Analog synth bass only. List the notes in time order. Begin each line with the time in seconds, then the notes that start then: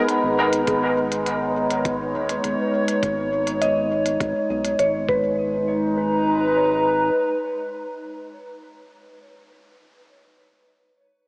0.24 G#1
0.68 G#1
2.15 D#1
2.44 D#1
3.03 G#1
4.20 G#1
4.50 B1
4.79 G#1
5.09 G#1